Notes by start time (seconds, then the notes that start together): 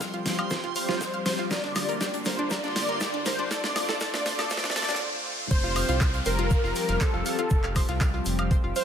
Already playing: C2 F3 G3 C4 G4 C6, riser
0.01 F5, kick, snare, closed hi-hat, shaker
0.14 F4, closed hi-hat
0.26 F1, snare, open hi-hat, shaker
0.39 F5, closed hi-hat, high woodblock
0.50 C5, kick, snare, closed hi-hat, shaker
0.64 F1 F4, closed hi-hat
0.76 C5 F5, open hi-hat, shaker
0.89 F1 F4, snare, closed hi-hat
1.01 kick, snare, closed hi-hat, shaker
1.14 F1 F5, closed hi-hat
1.26 C5, snare, open hi-hat, shaker
1.38 F4, snare, closed hi-hat
1.51 G1 D3 A#3 F4 A#4 D5, kick, snare, closed hi-hat, shaker
1.64 D4, snare, closed hi-hat
1.76 snare, open hi-hat, high woodblock, shaker
1.89 D2 A#4, closed hi-hat
2.01 G4, kick, snare, closed hi-hat, shaker
2.14 D4, closed hi-hat
2.25 G1 A#4 C5, snare, open hi-hat, shaker
2.39 D4, closed hi-hat
2.51 A#4 D5, kick, snare, closed hi-hat, shaker
2.64 G1 D4, snare, closed hi-hat
2.76 snare, open hi-hat, shaker
2.89 G1 A#4, snare, closed hi-hat
3.01 G4, kick, snare, closed hi-hat, shaker
3.14 G1 D4, closed hi-hat
3.26 A#4 C5, snare, open hi-hat, shaker
3.39 D4, closed hi-hat
3.51 D2 A3 C4 A4 D5, kick, snare, closed hi-hat, shaker
3.64 D4, snare, closed hi-hat
3.76 snare, open hi-hat, high woodblock, shaker
3.89 A1 A4, snare, closed hi-hat
4.00 A4 D5, kick, snare, closed hi-hat, shaker
4.14 D4, snare, closed hi-hat
4.26 D2, snare, open hi-hat, shaker
4.39 A4, snare, closed hi-hat, high woodblock
4.50 A4 D5, kick, snare, closed hi-hat, shaker
4.57 snare
4.64 D2 D4, snare, closed hi-hat
4.70 snare
4.76 A4 D5, snare, open hi-hat, shaker
4.82 snare
4.89 C2 D4, snare, closed hi-hat
4.95 snare
5.51 F1 F3 G3 C4 G4 C5, kick, closed hi-hat, crash, downlifter, shaker
5.63 F4, snare
5.76 F5, open hi-hat, high woodblock, shaker
5.89 C2 F4, closed hi-hat
6.00 kick, snare, clap, closed hi-hat, shaker
6.14 F5, closed hi-hat
6.25 F1 A#4 C5, open hi-hat, shaker
6.39 F4, closed hi-hat
6.51 F5, kick, closed hi-hat, shaker
6.64 F1 F4, snare
6.75 open hi-hat, shaker
6.89 F1 F5, snare, closed hi-hat
7.01 A4 C5, kick, snare, clap, closed hi-hat, shaker
7.14 F1 F4
7.26 F5, open hi-hat, shaker
7.39 F4, closed hi-hat
7.50 F1, kick, closed hi-hat, shaker
7.64 F5, clap
7.76 C5, kick, open hi-hat, high woodblock, shaker
7.88 C2 F4, snare, closed hi-hat
8.01 F5, kick, snare, clap, closed hi-hat, shaker
8.14 F4
8.25 F1, open hi-hat, shaker
8.39 F5, closed hi-hat, high woodblock
8.51 C5, kick, closed hi-hat, shaker
8.64 F1 F4
8.76 C5 F5, open hi-hat, shaker